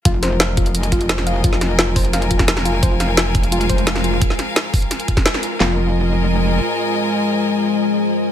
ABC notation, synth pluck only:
X:1
M:4/4
L:1/8
Q:1/4=173
K:Fm
V:1 name="Synth pluck"
F c f F z F c f | F z F c f F z F | c f F z F c f F | z8 |
F z6 z | z8 |]